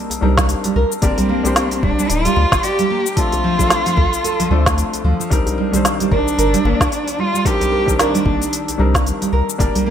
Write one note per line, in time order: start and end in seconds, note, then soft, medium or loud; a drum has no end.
0.00 0.21 G3 medium
0.00 0.22 A#3 medium
0.00 0.22 C4 medium
0.00 0.22 D4 medium
0.00 0.23 D#4 medium
0.00 0.23 A#4 medium
0.10 open hi-hat soft
0.10 djembe tone medium
0.10 shaker soft
0.21 0.55 C2 medium
0.21 0.36 G3 medium
0.21 0.36 C4 medium
0.21 0.36 D4 medium
0.21 0.37 D#4 medium
0.21 0.37 A#4 medium
0.38 0.48 G3 medium
0.38 kick loud
0.38 snare medium
0.38 open hi-hat soft
0.38 djembe slap medium
0.38 shaker medium
0.49 open hi-hat medium
0.49 shaker medium
0.64 0.75 G3 medium
0.64 open hi-hat soft
0.64 djembe tone soft
0.64 shaker soft
0.76 0.85 C2 medium
0.76 0.90 A#4 medium
0.92 shaker medium
1.02 1.12 G1 loud
1.02 1.41 G3 medium
1.02 1.41 A#3 medium
1.02 1.84 C4 loud
1.02 1.41 D4 medium
1.02 1.41 G4 medium
1.02 1.42 A#4 loud
1.02 1.16 D5 medium
1.02 kick loud
1.02 open hi-hat medium
1.02 djembe tone medium
1.02 shaker medium
1.18 1.28 G3 loud
1.18 open hi-hat soft
1.18 djembe bass loud
1.18 shaker soft
1.29 1.44 A#3 medium
1.43 3.13 G3 medium
1.43 3.14 A#3 medium
1.43 3.14 D4 medium
1.43 3.15 G4 medium
1.43 open hi-hat soft
1.43 djembe bass medium
1.43 shaker medium
1.47 3.15 C5 medium
1.56 snare medium
1.56 open hi-hat medium
1.56 shaker medium
1.71 open hi-hat soft
1.71 djembe slap medium
1.71 shaker soft
1.83 1.92 D1 medium
1.83 1.97 G3 medium
1.83 2.11 D4 loud
1.83 kick loud
1.83 djembe slap medium
1.83 djembe bass loud
1.98 2.09 G3 medium
1.98 shaker medium
2.09 2.28 D1 medium
2.09 2.65 F4 loud
2.09 open hi-hat medium
2.09 shaker medium
2.25 2.35 G3 medium
2.25 open hi-hat soft
2.25 djembe tone medium
2.25 shaker soft
2.36 2.46 D2 loud
2.36 2.51 D5 medium
2.36 djembe slap medium
2.36 djembe tone medium
2.52 2.59 G1 medium
2.52 kick loud
2.52 snare medium
2.52 open hi-hat soft
2.52 shaker medium
2.63 3.18 G4 loud
2.63 2.77 D5 medium
2.63 open hi-hat medium
2.63 shaker medium
2.78 2.89 G3 medium
2.78 open hi-hat soft
2.78 djembe slap soft
2.78 shaker soft
2.90 3.05 A#3 medium
3.06 shaker medium
3.16 3.55 F3 medium
3.16 3.55 A3 medium
3.16 3.55 C4 medium
3.16 3.56 D4 medium
3.16 5.04 F4 loud
3.16 3.56 A4 medium
3.16 kick loud
3.16 open hi-hat medium
3.16 djembe tone medium
3.16 shaker medium
3.32 open hi-hat soft
3.32 djembe bass loud
3.32 shaker soft
3.44 3.58 F3 medium
3.58 4.48 F3 medium
3.58 3.70 F3 medium
3.58 4.48 A3 medium
3.58 4.49 C4 medium
3.58 4.49 D4 medium
3.58 4.50 A4 medium
3.58 kick medium
3.58 open hi-hat soft
3.58 djembe bass loud
3.58 shaker medium
3.70 snare medium
3.70 open hi-hat medium
3.70 shaker medium
3.86 3.96 F3 medium
3.86 open hi-hat soft
3.86 djembe slap medium
3.86 shaker soft
3.97 4.07 D2 medium
3.97 4.12 A4 medium
3.97 kick loud
3.97 djembe slap soft
3.97 djembe bass medium
4.13 open hi-hat soft
4.13 shaker medium
4.24 4.38 A4 medium
4.24 open hi-hat medium
4.24 shaker medium
4.39 4.50 F3 loud
4.39 open hi-hat soft
4.39 djembe tone medium
4.39 shaker soft
4.50 4.83 D2 medium
4.50 4.65 F3 medium
4.50 4.65 A3 medium
4.50 4.65 C4 medium
4.50 4.65 D4 medium
4.50 4.66 A4 medium
4.66 kick loud
4.66 snare medium
4.66 open hi-hat soft
4.66 djembe slap medium
4.66 shaker medium
4.78 open hi-hat medium
4.78 shaker medium
4.93 open hi-hat soft
4.93 djembe tone soft
4.93 shaker soft
5.04 5.14 D2 medium
5.04 5.18 F3 medium
5.20 5.31 F3 medium
5.20 shaker medium
5.30 5.41 C2 medium
5.30 5.69 G3 medium
5.30 5.69 C4 medium
5.30 5.70 D4 medium
5.30 5.70 D#4 medium
5.30 5.70 A#4 loud
5.30 kick loud
5.30 open hi-hat medium
5.30 djembe tone medium
5.30 shaker medium
5.46 open hi-hat soft
5.46 djembe bass medium
5.46 shaker soft
5.58 5.72 G3 medium
5.72 7.44 D#3 medium
5.72 7.42 G3 medium
5.72 5.84 G3 medium
5.72 7.43 C4 medium
5.72 7.43 D4 medium
5.72 open hi-hat soft
5.72 djembe bass medium
5.72 shaker medium
5.76 7.44 C5 medium
5.85 snare medium
5.85 open hi-hat medium
5.85 shaker medium
6.00 6.10 G3 medium
6.00 open hi-hat soft
6.00 djembe slap soft
6.00 shaker soft
6.11 6.21 G1 medium
6.11 7.21 D4 loud
6.11 6.26 A#4 medium
6.11 kick loud
6.11 djembe slap medium
6.11 djembe bass loud
6.28 shaker medium
6.38 6.56 G1 medium
6.38 6.52 A#4 medium
6.38 open hi-hat medium
6.38 shaker medium
6.54 6.64 G3 loud
6.54 open hi-hat soft
6.54 djembe tone medium
6.54 shaker soft
6.65 6.74 G1 loud
6.65 6.80 A#3 medium
6.65 djembe slap medium
6.65 djembe tone medium
6.81 6.87 C2 loud
6.81 kick loud
6.81 snare medium
6.81 open hi-hat soft
6.81 shaker medium
6.92 open hi-hat medium
6.92 shaker medium
7.08 open hi-hat soft
7.08 djembe slap soft
7.08 shaker soft
7.18 7.32 G3 medium
7.18 7.48 F4 loud
7.34 7.45 G3 medium
7.34 shaker medium
7.45 7.84 G3 medium
7.45 7.84 C4 medium
7.45 7.84 D4 medium
7.45 7.84 D#4 medium
7.45 7.99 G4 loud
7.45 7.85 A#4 loud
7.45 kick loud
7.45 open hi-hat medium
7.45 djembe tone medium
7.45 shaker medium
7.61 7.71 G3 medium
7.61 open hi-hat soft
7.61 djembe bass loud
7.61 shaker soft
7.72 7.87 A#4 medium
7.86 8.78 D#3 medium
7.86 8.76 G3 medium
7.86 8.77 C4 medium
7.86 8.77 D4 medium
7.86 8.78 A#4 medium
7.86 kick medium
7.86 open hi-hat soft
7.86 djembe bass medium
7.86 shaker medium
7.99 8.76 D4 medium
7.99 8.13 A#4 medium
7.99 snare medium
7.99 open hi-hat medium
7.99 shaker medium
8.14 8.25 G3 loud
8.14 open hi-hat soft
8.14 djembe slap soft
8.14 shaker soft
8.25 8.35 G1 medium
8.25 8.40 A#3 medium
8.25 kick loud
8.25 djembe slap medium
8.25 djembe bass medium
8.42 open hi-hat soft
8.42 shaker medium
8.53 open hi-hat medium
8.53 shaker medium
8.68 open hi-hat soft
8.68 djembe tone medium
8.68 shaker soft
8.78 9.12 C2 medium
8.78 8.93 G3 medium
8.78 8.93 C4 medium
8.78 8.93 D4 medium
8.78 8.94 D#4 medium
8.78 8.94 A#4 medium
8.95 9.05 G3 medium
8.95 kick loud
8.95 snare medium
8.95 open hi-hat soft
8.95 djembe slap medium
8.95 shaker medium
9.07 open hi-hat medium
9.07 shaker medium
9.21 9.32 G3 medium
9.21 open hi-hat soft
9.21 djembe tone soft
9.21 shaker soft
9.33 9.42 C2 medium
9.33 9.47 A#4 medium
9.49 shaker medium
9.58 9.69 G1 loud
9.58 9.90 G3 medium
9.58 9.90 A#3 medium
9.58 9.90 D4 medium
9.58 9.90 G4 medium
9.58 9.90 A#4 loud
9.58 9.74 D5 medium
9.58 kick loud
9.58 open hi-hat medium
9.58 djembe tone medium
9.58 shaker medium
9.75 9.85 G3 loud
9.75 open hi-hat soft
9.75 djembe bass medium
9.75 shaker soft
9.86 9.90 A#3 medium